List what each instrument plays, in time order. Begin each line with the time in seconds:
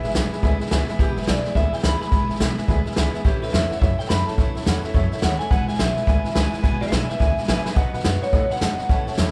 Already playing: clean electric guitar E5
0.03 upright bass G#1, steel-string acoustic guitar E3 G#3 B3 E4, honky-tonk piano G#4 B4 E5, snare
0.09 snare
0.14 upright bass B1, steel-string acoustic guitar E2 B2 E3 G#3 B3 E4, honky-tonk piano G#4 B4 E5, snare, hi-hat pedal
0.32 steel-string acoustic guitar E3 G#3 B3 E4, honky-tonk piano G#4 B4 E5, muted upright bass stroke, snare
0.42 upright bass D2, steel-string acoustic guitar E3 G#3 B3 E4, honky-tonk piano G#4 B4 E5, kick, snare
0.60 steel-string acoustic guitar E3 G#3 B3 E4, honky-tonk piano G#4 B4 E5, muted upright bass stroke, snare
0.66 snare
0.70 upright bass C#2, steel-string acoustic guitar E2 B2 E3 G#3 B3 E4, honky-tonk piano G#4 B4 E5, snare, hi-hat pedal
0.88 steel-string acoustic guitar E3 G#3 B3 E4, honky-tonk piano G#4 B4 E5, muted upright bass stroke, snare
0.99 upright bass E1, steel-string acoustic guitar E2 B2 E3 G#3 B3 E4, clean electric guitar G4, honky-tonk piano G#4 B4 E5, kick, snare
1.17 upright bass G#1, steel-string acoustic guitar E3 G#3 B3 E4, honky-tonk piano G#4 B4 E5, clean electric guitar B4, snare
1.22 snare
1.27 upright bass B1, steel-string acoustic guitar E2 B2 E3 G#3 B3 E4, honky-tonk piano G#4 B4 E5, clean electric guitar D5, snare, hi-hat pedal
1.44 steel-string acoustic guitar E3 G#3 B3 E4, honky-tonk piano G#4 B4 E5, muted upright bass stroke, snare
1.54 upright bass D2, steel-string acoustic guitar E3 G#3 B3 E4, honky-tonk piano G#4 B4 E5, clean electric guitar E5, kick, snare
1.72 steel-string acoustic guitar E3 G#3 B3 E4, honky-tonk piano G#4 B4 E5, clean electric guitar G5, muted upright bass stroke, snare
1.78 snare
1.83 upright bass C#2, steel-string acoustic guitar E2 B2 E3 G#3 B3 E4, honky-tonk piano G#4 B4 E5, clean electric guitar B5, snare, hi-hat pedal
2.00 steel-string acoustic guitar E3 G#3 B3 E4, honky-tonk piano G#4 B4 E5, clean electric guitar B5, snare
2.10 upright bass E1, steel-string acoustic guitar E2 B2 E3 G#3 B3 E4, honky-tonk piano G#4 B4 E5, kick, snare
2.29 upright bass G#1, steel-string acoustic guitar E3 G#3 B3 E4, honky-tonk piano G#4 B4 E5, snare
2.35 snare
2.39 upright bass B1, steel-string acoustic guitar E2 B2 E3 G#3 B3 E4, honky-tonk piano G#4 B4 E5, snare, hi-hat pedal
2.57 steel-string acoustic guitar E3 G#3 B3 E4, honky-tonk piano G#4 B4 E5, muted upright bass stroke, snare
2.68 upright bass D2, steel-string acoustic guitar E3 G#3 B3 E4, honky-tonk piano G#4 B4 E5, kick, snare
2.86 steel-string acoustic guitar E3 G#3 B3 E4, honky-tonk piano G#4 B4 E5, muted upright bass stroke, snare
2.91 snare
2.96 upright bass C#2, steel-string acoustic guitar E2 B2 E3 G#3 B3 E4, honky-tonk piano G#4 B4 E5, snare, hi-hat pedal
3.13 steel-string acoustic guitar E3 G#3 B3 E4, honky-tonk piano G#4 B4 E5, muted upright bass stroke, snare
3.24 upright bass A1, steel-string acoustic guitar A2 E3 A3 C#4 E4, clean electric guitar G4, honky-tonk piano A4 C#5 E5, kick, snare
3.41 upright bass C#2, steel-string acoustic guitar A3 C#4 E4, honky-tonk piano A4 C#5 E5, clean electric guitar B4, snare
3.48 honky-tonk piano A4 C#5, snare
3.53 upright bass E2, steel-string acoustic guitar A2 E3 A3 C#4 E4, clean electric guitar E5, honky-tonk piano E5, snare, hi-hat pedal
3.69 steel-string acoustic guitar A3 C#4 E4, honky-tonk piano A4 C#5 F#5, muted upright bass stroke, snare
3.80 upright bass F#2, steel-string acoustic guitar E3 A3 C#4 E4, honky-tonk piano A4 C#5 E5, clean electric guitar E5, kick, snare
3.97 steel-string acoustic guitar A3 C#4 E4, honky-tonk piano A4 C#5 E5, clean electric guitar G5, muted upright bass stroke, snare
4.05 honky-tonk piano A4, snare
4.09 upright bass F#2, steel-string acoustic guitar A2 E3 A3 C#4 E4, honky-tonk piano C#5 E5, clean electric guitar B5, snare, hi-hat pedal
4.26 steel-string acoustic guitar A3 C#4 E4, honky-tonk piano A4 C#5 E5, clean electric guitar A5, muted upright bass stroke, snare
4.38 upright bass A1, steel-string acoustic guitar A2 E3 A3 C#4 E4, honky-tonk piano A4 C#5 E5, kick, snare
4.54 upright bass C#2, steel-string acoustic guitar A3 C#4 E4, honky-tonk piano A4 C#5 E5, snare
4.61 snare
4.66 upright bass E2, steel-string acoustic guitar A2 E3 A3 C#4 E4, honky-tonk piano A4 C#5 F#5, snare, hi-hat pedal
4.83 steel-string acoustic guitar A3 C#4 E4, honky-tonk piano A4 C#5 E5, muted upright bass stroke, snare
4.94 upright bass F#2, steel-string acoustic guitar E3 A3 C#4 E4, honky-tonk piano A4 C#5 E5, kick, snare
5.11 steel-string acoustic guitar A3 C#4 E4, honky-tonk piano A4 C#5 E5, muted upright bass stroke, snare
5.17 snare
5.21 upright bass D#2, steel-string acoustic guitar A2 E3 A3 C#4 E4, honky-tonk piano A4 C#5 E5, clean electric guitar F#5, snare, hi-hat pedal
5.39 steel-string acoustic guitar A3 C#4 E4, honky-tonk piano A4 C#5 E5, clean electric guitar G#5, snare
5.50 upright bass E1, steel-string acoustic guitar E2 B2 E3 G#3 B3 E4, honky-tonk piano B4 E5 G#5, clean electric guitar F#5, kick, snare
5.67 upright bass G#1, steel-string acoustic guitar E3 G#3 B3 E4, honky-tonk piano B4 E5 G#5, clean electric guitar G#5, snare
5.74 snare
5.79 upright bass B1, steel-string acoustic guitar E2 B2 E3 G#3 B3 E4, honky-tonk piano B4 E5 G#5, clean electric guitar E5, snare, hi-hat pedal
5.96 steel-string acoustic guitar E3 G#3 B3 E4, honky-tonk piano B4 E5 G#5, muted upright bass stroke, snare
6.07 upright bass D2, steel-string acoustic guitar E3 G#3 B3 E4, honky-tonk piano B4 E5 G#5, kick, snare
6.24 steel-string acoustic guitar E3 G#3 B3 E4, honky-tonk piano B4 E5 G#5, muted upright bass stroke, snare
6.30 snare
6.35 upright bass C#2, steel-string acoustic guitar E2 B2 E3 G#3 B3 E4, honky-tonk piano B4 E5 G#5, snare, hi-hat pedal
6.51 steel-string acoustic guitar E3 G#3 B3 E4, honky-tonk piano B4 E5 G#5, muted upright bass stroke, snare
6.62 upright bass E1, steel-string acoustic guitar E2 B2 E3 G#3 B3 E4, honky-tonk piano B4 E5 G#5, kick, snare
6.81 upright bass G#1, steel-string acoustic guitar E3 G#3 B3 E4, clean electric guitar G#4 E5, honky-tonk piano B4 E5, snare
6.86 snare
6.91 upright bass B1, steel-string acoustic guitar E2 B2 E3 G#3 B3 E4, honky-tonk piano B4 E5 G#5, clean electric guitar E5 G5, snare, hi-hat pedal
7.09 steel-string acoustic guitar E3 G#3 B3 E4, honky-tonk piano B4 E5 G#5, clean electric guitar E5, snare
7.20 upright bass D2, steel-string acoustic guitar E3 G#3 B3 E4, honky-tonk piano B4 E5 G#5, kick, snare
7.37 steel-string acoustic guitar E3 G#3 B3 E4, honky-tonk piano B4 E5 G#5, muted upright bass stroke, snare
7.43 snare
7.48 upright bass A#1, steel-string acoustic guitar E2 B2 E3 G#3 B3 E4, honky-tonk piano B4 E5 G#5, snare, hi-hat pedal
7.65 steel-string acoustic guitar E3 G#3 B3 E4, honky-tonk piano B4 E5 G#5, muted upright bass stroke, snare
7.75 upright bass B1, steel-string acoustic guitar B2 F#3 B3 D#4 F#4, honky-tonk piano B4 D#5 F#5, kick, snare
7.93 upright bass D#2, steel-string acoustic guitar B3 D#4 F#4, honky-tonk piano B4 D#5 F#5, snare
7.99 snare
8.04 upright bass F#2, steel-string acoustic guitar B2 F#3 B3 D#4 F#4, honky-tonk piano B4 D#5 F#5, clean electric guitar B4, snare, hi-hat pedal
8.21 steel-string acoustic guitar B3 D#4 F#4, honky-tonk piano B4 D#5 F#5, clean electric guitar C#5, snare
8.32 upright bass A2, steel-string acoustic guitar F#3 B3 D#4 F#4, honky-tonk piano B4 D#5 F#5, kick, snare
8.49 steel-string acoustic guitar B3 D#4 F#4, honky-tonk piano B4 D#5 F#5, clean electric guitar F#5, muted upright bass stroke, snare
8.56 snare
8.60 upright bass G#2, steel-string acoustic guitar B2 F#3 B3 D#4 F#4, honky-tonk piano B4 D#5 A5, clean electric guitar F#5, snare, hi-hat pedal
8.78 steel-string acoustic guitar B3 D#4 F#4, honky-tonk piano B4 D#5 F#5, muted upright bass stroke, snare
8.89 upright bass A1, steel-string acoustic guitar A2 E3 A3 C#4 E4, honky-tonk piano C#5 E5 A5, kick, snare
9.07 upright bass C#2, steel-string acoustic guitar A3 C#4 E4, honky-tonk piano C#5 E5 A5, snare
9.12 snare
9.17 upright bass E2, steel-string acoustic guitar A2 E3 A3 C#4 E4, honky-tonk piano C#5 E5 A5, snare, hi-hat pedal